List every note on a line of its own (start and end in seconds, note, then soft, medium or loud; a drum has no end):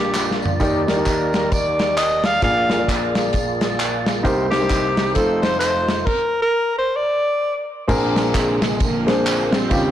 0.00 0.57 A#1 medium
0.00 0.57 A#2 medium
0.00 5.11 A#3 medium
0.00 0.59 D4 medium
0.00 0.60 D4 medium
0.00 0.58 F4 medium
0.00 0.60 F4 medium
0.00 0.39 G4 medium
0.00 5.12 A#4 medium
0.00 4.20 D5 medium
0.00 4.21 D5 medium
0.14 snare medium
0.14 clap medium
0.14 tambourine medium
0.31 snare medium
0.42 floor tom medium
0.42 tambourine medium
0.60 2.39 D#2 medium
0.60 2.39 D#3 medium
0.60 0.80 D#4 medium
0.60 2.41 D#4 medium
0.60 2.42 D#4 medium
0.60 0.80 G4 medium
0.60 2.41 G4 medium
0.60 2.42 G4 medium
0.60 0.81 A#4 medium
0.60 0.81 D5 medium
0.60 kick loud
0.60 closed hi-hat medium
0.60 tambourine medium
0.87 0.95 D#4 medium
0.87 0.95 G4 medium
0.87 0.95 A#4 medium
0.87 1.54 A#4 medium
0.87 0.95 D5 medium
0.87 snare medium
0.87 closed hi-hat medium
0.87 tambourine medium
0.96 1.61 D#4 medium
0.96 1.61 G4 medium
0.96 1.62 A#4 medium
0.96 1.62 D5 medium
1.06 kick medium
1.06 clap medium
1.06 closed hi-hat medium
1.06 tambourine medium
1.33 snare loud
1.33 closed hi-hat medium
1.33 tambourine soft
1.52 1.97 D5 medium
1.52 kick loud
1.52 closed hi-hat medium
1.52 tambourine medium
1.79 snare loud
1.79 closed hi-hat medium
1.79 tambourine soft
1.97 2.27 D#5 medium
1.97 clap medium
1.97 closed hi-hat medium
1.97 tambourine loud
2.24 2.43 F5 loud
2.24 snare loud
2.24 closed hi-hat medium
2.24 tambourine medium
2.41 4.21 A#1 medium
2.41 4.21 A#2 medium
2.41 4.22 F4 medium
2.41 2.62 F4 medium
2.41 4.24 F4 medium
2.41 4.23 G#4 medium
2.41 2.63 G#4 medium
2.41 4.24 G#4 medium
2.41 2.63 A#4 medium
2.41 2.63 D5 medium
2.41 2.86 F5 medium
2.41 kick loud
2.41 closed hi-hat medium
2.41 tambourine medium
2.69 2.76 F4 medium
2.69 2.77 G#4 medium
2.69 2.77 A#4 medium
2.69 2.77 F5 medium
2.69 snare medium
2.69 closed hi-hat medium
2.69 tambourine medium
2.78 3.43 F4 medium
2.78 3.43 G#4 medium
2.78 3.43 A#4 medium
2.78 3.43 D5 medium
2.88 kick medium
2.88 clap medium
2.88 closed hi-hat medium
2.88 tambourine medium
3.15 snare loud
3.15 closed hi-hat medium
3.15 tambourine soft
3.33 kick medium
3.33 closed hi-hat medium
3.33 tambourine medium
3.61 snare loud
3.61 closed hi-hat medium
3.61 tambourine soft
3.80 clap medium
3.80 closed hi-hat medium
3.80 tambourine medium
4.06 snare loud
4.06 closed hi-hat medium
4.06 tambourine soft
4.23 5.12 C2 medium
4.23 5.11 C3 medium
4.23 4.44 D#4 medium
4.23 6.06 D#4 medium
4.23 4.44 G4 medium
4.23 5.16 G4 medium
4.23 4.44 A#4 medium
4.23 4.44 C5 loud
4.23 6.06 C5 medium
4.23 kick loud
4.23 closed hi-hat medium
4.23 tambourine medium
4.27 5.15 D#4 medium
4.27 5.16 G4 medium
4.27 6.07 C5 medium
4.51 4.58 D#4 medium
4.51 5.11 G4 medium
4.51 4.58 G4 medium
4.51 4.58 A#4 medium
4.51 4.59 C5 medium
4.51 snare medium
4.51 closed hi-hat medium
4.51 tambourine medium
4.60 4.65 D4 medium
4.60 5.16 G4 medium
4.60 5.16 A#4 medium
4.60 5.15 C5 medium
4.66 5.14 D#4 medium
4.70 kick medium
4.70 clap medium
4.70 closed hi-hat medium
4.70 tambourine medium
4.97 snare medium
4.97 closed hi-hat medium
4.97 tambourine soft
5.15 6.03 F1 medium
5.15 6.03 F2 medium
5.15 6.06 A3 medium
5.15 5.92 D#4 medium
5.15 6.06 D#4 medium
5.15 5.93 F4 medium
5.15 6.06 F4 medium
5.15 5.41 A4 medium
5.15 5.93 A4 medium
5.15 6.06 A4 medium
5.15 5.93 C5 medium
5.15 kick loud
5.15 closed hi-hat medium
5.15 tambourine medium
5.42 5.58 C5 medium
5.42 snare loud
5.42 closed hi-hat medium
5.42 tambourine soft
5.59 6.02 C5 medium
5.59 clap medium
5.59 closed hi-hat medium
5.59 tambourine loud
5.89 snare medium
5.89 closed hi-hat medium
5.89 tambourine medium
6.02 6.41 A#4 medium
6.02 6.07 C5 medium
6.07 kick loud
6.07 crash medium
6.42 6.77 A#4 loud
6.78 6.97 C5 medium
6.96 7.70 D5 medium
7.88 9.67 A#1 medium
7.88 9.67 A#2 medium
7.88 8.57 C4 medium
7.88 8.57 D4 medium
7.88 8.58 G#4 medium
7.88 8.58 A#4 loud
7.88 kick loud
7.88 crash loud
7.88 tambourine medium
8.16 snare loud
8.16 ride medium
8.16 tambourine medium
8.34 9.22 C3 medium
8.34 8.79 D3 medium
8.34 8.78 G#3 medium
8.34 kick medium
8.34 clap medium
8.34 ride medium
8.34 tambourine medium
8.62 snare loud
8.62 ride medium
8.62 tambourine medium
8.80 9.16 D3 medium
8.80 9.16 F3 medium
8.80 9.16 A#3 loud
8.80 kick loud
8.80 ride medium
8.80 tambourine medium
9.07 9.55 C4 medium
9.07 9.55 D4 medium
9.07 9.55 G#4 medium
9.07 9.56 C5 medium
9.07 snare loud
9.07 ride medium
9.07 tambourine medium
9.17 9.68 D3 medium
9.17 9.52 F3 medium
9.17 9.51 A#3 medium
9.26 clap loud
9.26 ride medium
9.26 tambourine loud
9.53 9.91 F3 medium
9.53 9.91 G3 medium
9.53 9.91 C4 loud
9.53 snare loud
9.53 ride soft
9.53 tambourine medium
9.70 9.91 D#2 medium
9.70 9.91 C#3 medium
9.70 9.91 D#3 medium
9.70 9.91 D#4 medium
9.70 9.91 F4 medium
9.70 9.91 G4 medium
9.70 kick loud
9.70 ride medium
9.70 tambourine medium